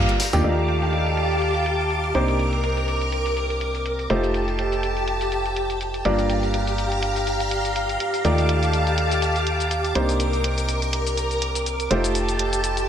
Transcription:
Already playing: string machine G4 F5 A#5
0.09 closed hi-hat
0.20 snare, open hi-hat, tambourine, shaker
0.33 fm bass D#2, grand piano D#3 A#3 D4 F4 G4 G5, closed hi-hat, tambourine
0.44 fm bass D#2, grand piano D#3 A3 D#4 F4 G4 D5, string machine G4 F5 A5 D6, closed hi-hat, cabasa
0.58 closed hi-hat, cabasa
0.68 closed hi-hat
0.82 closed hi-hat, cabasa
0.93 closed hi-hat, cabasa
1.06 closed hi-hat, cabasa
1.17 closed hi-hat
1.31 closed hi-hat, cabasa
1.42 closed hi-hat, cabasa
1.55 closed hi-hat, cabasa
1.66 closed hi-hat
1.80 closed hi-hat, cabasa
1.90 closed hi-hat, cabasa
2.04 closed hi-hat, cabasa
2.15 fm bass C2, grand piano C3 A#3 D4 D#4 G4 C5, string machine A#4, closed hi-hat
2.28 closed hi-hat, cabasa
2.39 closed hi-hat, cabasa
2.53 closed hi-hat, cabasa
2.64 closed hi-hat
2.77 closed hi-hat, cabasa
2.88 closed hi-hat, cabasa
3.01 closed hi-hat, cabasa
3.12 closed hi-hat
3.26 closed hi-hat, cabasa
3.37 closed hi-hat, cabasa
3.50 closed hi-hat, cabasa
3.61 closed hi-hat
3.75 closed hi-hat, cabasa
3.86 closed hi-hat, cabasa
3.99 closed hi-hat, cabasa
4.10 fm bass F1, grand piano A3 D#4 F4 G4 C5, string machine G4 A5, closed hi-hat
4.23 closed hi-hat, cabasa
4.34 closed hi-hat, cabasa
4.48 closed hi-hat, cabasa
4.59 closed hi-hat
4.72 closed hi-hat, cabasa
4.83 closed hi-hat, cabasa
4.97 closed hi-hat, cabasa
5.08 closed hi-hat
5.21 closed hi-hat, cabasa
5.32 closed hi-hat, cabasa
5.45 closed hi-hat, cabasa
5.56 closed hi-hat
5.70 closed hi-hat, cabasa
5.81 closed hi-hat, cabasa
5.94 closed hi-hat, cabasa
6.05 fm bass G1, grand piano G2 A#3 D4 F4 G4 D5, string machine G4 F5 A#5, closed hi-hat
6.19 closed hi-hat, cabasa
6.30 closed hi-hat, cabasa
6.43 closed hi-hat, cabasa
6.54 closed hi-hat
6.67 closed hi-hat, cabasa
6.78 closed hi-hat, cabasa
6.92 closed hi-hat, cabasa
7.03 closed hi-hat
7.16 closed hi-hat, cabasa
7.27 closed hi-hat, cabasa
7.40 closed hi-hat, cabasa
7.51 closed hi-hat
7.65 closed hi-hat, cabasa
7.76 closed hi-hat, cabasa
7.89 closed hi-hat, cabasa
8.00 closed hi-hat
8.14 closed hi-hat, cabasa
8.24 fm bass D#2, grand piano D#3 A3 D#4 F4 G4 D5, string machine G4 A5 D6, closed hi-hat, cabasa
8.38 closed hi-hat, cabasa
8.49 closed hi-hat
8.63 closed hi-hat, cabasa
8.73 closed hi-hat, cabasa
8.87 closed hi-hat, cabasa
8.98 closed hi-hat
9.11 closed hi-hat, cabasa
9.22 closed hi-hat, cabasa
9.36 closed hi-hat, cabasa
9.47 closed hi-hat
9.60 closed hi-hat, cabasa
9.71 closed hi-hat, cabasa
9.84 closed hi-hat, cabasa
9.95 fm bass C2, grand piano C3 A#3 D4 D#4 G4 C5, string machine A#4, closed hi-hat
10.09 closed hi-hat, cabasa
10.20 closed hi-hat, cabasa
10.33 closed hi-hat, cabasa
10.44 closed hi-hat
10.58 closed hi-hat, cabasa
10.69 closed hi-hat, cabasa
10.82 closed hi-hat, cabasa
10.93 closed hi-hat
11.07 closed hi-hat, cabasa
11.17 closed hi-hat, cabasa
11.31 closed hi-hat, cabasa
11.42 closed hi-hat
11.55 closed hi-hat, cabasa
11.66 closed hi-hat, cabasa
11.80 closed hi-hat, cabasa
11.91 fm bass F1, grand piano A3 D#4 F4 G4 C5, string machine G4 A5, closed hi-hat
12.04 closed hi-hat, cabasa
12.15 closed hi-hat, cabasa
12.29 closed hi-hat, cabasa
12.39 closed hi-hat
12.53 closed hi-hat, cabasa
12.64 closed hi-hat, cabasa
12.77 closed hi-hat, cabasa

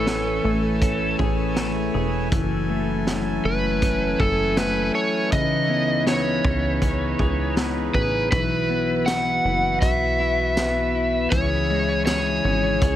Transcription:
Already playing: analog synth bass A1, clean electric guitar E3 A3, pipe organ A3 E4 B4 C#5 G#5, electric slide guitar A4
0.06 clean electric guitar C#4, snare, closed hi-hat
0.44 analog synth bass A1, clean electric guitar A3
0.81 clean electric guitar C#4, kick, closed hi-hat
1.19 analog synth bass A1, clean electric guitar G#4, kick
1.56 clean electric guitar A3, snare, closed hi-hat
1.94 analog synth bass E1, clean electric guitar G#4
2.32 analog synth bass F#1, clean electric guitar E3, pipe organ F#3 C#4 A4, kick, closed hi-hat
2.69 clean electric guitar A3
3.07 clean electric guitar C#4, snare, closed hi-hat
3.45 analog synth bass F#1, clean electric guitar A3, electric slide guitar B4
3.82 clean electric guitar C#4, kick, closed hi-hat
4.20 analog synth bass F#1, electric slide guitar A4, clean electric guitar A4, kick
4.57 clean electric guitar A3, electric slide guitar B4, snare, closed hi-hat
4.95 clean electric guitar A4, electric slide guitar C#5
5.32 analog synth bass C#2, pipe organ C#3 D#4 B4, clean electric guitar E3, electric slide guitar D#5, kick, closed hi-hat
5.69 clean electric guitar B3
6.07 clean electric guitar C#4, electric slide guitar C#5, snare, closed hi-hat
6.44 analog synth bass C#2, clean electric guitar B3, kick
6.82 clean electric guitar C#4, kick, closed hi-hat
7.19 analog synth bass C#2, clean electric guitar G#4, kick
7.56 clean electric guitar B3, snare, closed hi-hat
7.94 analog synth bass A1, clean electric guitar G#4, electric slide guitar B4, kick
8.31 analog synth bass B1, clean electric guitar E3, pipe organ E4 F#4 B4, electric slide guitar B4, kick, closed hi-hat
8.70 clean electric guitar B3
9.06 clean electric guitar F#4, electric slide guitar F#5, snare, closed hi-hat, tambourine
9.45 analog synth bass F#1, clean electric guitar E4
9.81 analog synth bass B1, clean electric guitar F#4, electric slide guitar E5, kick, closed hi-hat
10.20 clean electric guitar E4
10.57 clean electric guitar B3, snare, closed hi-hat, tambourine
10.95 clean electric guitar E4
11.30 analog synth bass C#2, pipe organ C#3 C#4 E4 G#4 G#5, clean electric guitar E3, electric slide guitar C#5, kick, closed hi-hat
11.70 clean electric guitar G#3
12.06 clean electric guitar G#4, electric slide guitar C#5, snare, closed hi-hat, tambourine
12.44 analog synth bass G#1, clean electric guitar C#4
12.81 analog synth bass C#2, clean electric guitar G#4, kick, closed hi-hat

